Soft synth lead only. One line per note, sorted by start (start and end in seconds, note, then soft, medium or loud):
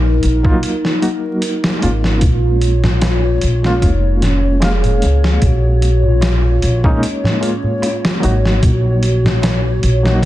0.00 0.64 D#4 loud
0.65 1.40 D#4 loud
1.46 2.25 D#4 loud
2.24 3.43 F4 loud
3.45 3.86 F4 loud
3.85 4.24 D#4 loud
4.25 4.65 C#4 medium
4.64 5.47 G#4 loud
5.45 6.08 F#4 loud
6.06 6.88 F4 loud
6.86 7.04 D#4 loud
7.05 7.80 C#4 loud
7.85 8.27 F4 loud
8.25 9.84 F#4 loud
9.85 10.25 F#4 loud